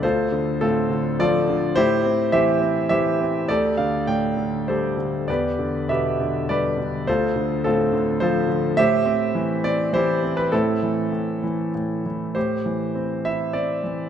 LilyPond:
<<
  \new Staff \with { instrumentName = "Grand piano" } { \time 3/4 \key a \minor \tempo 4 = 102 << { c''4 a'4 d''4 | c''4 e''4 e''4 | d''8 f''8 g''4 c''4 | d''4 e''4 d''4 |
c''4 a'4 c''4 | e''4. d''8 c''8. b'16 | a'2 r4 | c''4. e''8 d''4 | } \\ { <f' a'>4 <c' f'>4 <f' a'>4 | <e' g'>4 <g' c''>4 <g' c''>4 | <g' a'>4 d''4 <g' a'>4 | <g' b'>4 <g' b'>4 <g' b'>4 |
<f' a'>4 <c' f'>4 <f' a'>4 | <g' c''>4. r8 <e' g'>4 | <c' e'>2 r4 | g'4. r4. | } >> }
  \new Staff \with { instrumentName = "Grand piano" } { \clef bass \time 3/4 \key a \minor d,8 d8 a,8 d8 f8 d8 | a,8 c'8 e8 c'8 e8 c'8 | d,8 d8 a,8 d8 g8 d8 | e,8 d8 b,8 d8 g8 d8 |
d,8 d8 a,8 d8 f8 d8 | a,8 c'8 e8 c'8 e8 c'8 | a,8 e8 a,8 e8 a,8 e8 | a,8 e8 c'8 e'8 c'8 e8 | }
>>